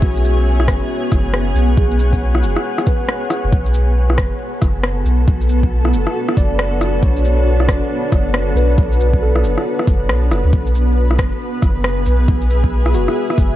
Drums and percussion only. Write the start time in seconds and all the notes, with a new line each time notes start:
0.02 kick
0.16 shaker
0.24 shaker
0.60 cross-stick
0.68 kick, cross-stick, shaker
1.12 kick, cross-stick, shaker
1.34 cross-stick
1.56 shaker
1.77 kick
1.91 shaker
1.99 shaker
2.13 kick, shaker
2.35 cross-stick
2.43 shaker
2.56 cross-stick
2.78 cross-stick, shaker
2.87 kick, shaker
3.09 cross-stick
3.30 cross-stick, shaker
3.53 kick
3.66 shaker
3.74 shaker
4.10 cross-stick
4.18 kick, cross-stick, shaker
4.62 kick, cross-stick, shaker
4.83 cross-stick
5.06 shaker
5.28 kick
5.41 shaker
5.49 shaker
5.63 kick
5.85 cross-stick
5.93 shaker
6.07 cross-stick
6.29 cross-stick
6.37 kick, shaker
6.59 cross-stick
6.81 cross-stick, shaker
7.03 kick
7.16 shaker
7.25 shaker
7.60 cross-stick
7.68 kick, cross-stick, shaker
8.12 kick, cross-stick, shaker
8.34 cross-stick
8.56 shaker
8.78 kick
8.92 shaker
9.00 shaker
9.13 kick
9.36 cross-stick
9.44 shaker
9.58 cross-stick
9.79 cross-stick
9.87 kick, shaker
10.09 cross-stick
10.31 cross-stick, shaker
10.53 kick
10.67 shaker
10.75 shaker
11.11 cross-stick
11.19 kick, cross-stick, shaker
11.62 kick, cross-stick, shaker
11.84 cross-stick
12.06 shaker
12.28 kick
12.42 shaker
12.50 shaker
12.64 kick
12.86 cross-stick
12.94 shaker
13.08 cross-stick
13.30 cross-stick
13.38 kick, shaker